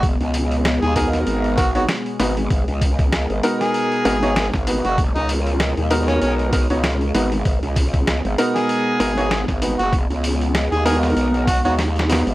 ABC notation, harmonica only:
X:1
M:4/4
L:1/16
Q:"Swing 16ths" 1/4=97
K:G#m
V:1 name="Harmonica"
z4 z G G z3 F F z4 | z6 z G6 z2 F | z D z4 z C C z6 z | z6 z G6 z2 F |
z4 z G G z3 F F z4 |]